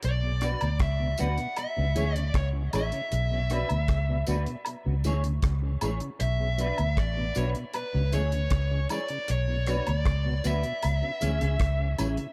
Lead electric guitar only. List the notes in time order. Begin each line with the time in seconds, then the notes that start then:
0.05 D5
0.82 E5
1.20 F#5
1.58 E5
2.16 D5
2.36 C#5
2.75 E5
6.21 E5
6.99 D5
7.37 C#5
7.75 B4
8.14 C#5
8.92 D5
9.31 C#5
9.89 D5
10.47 E5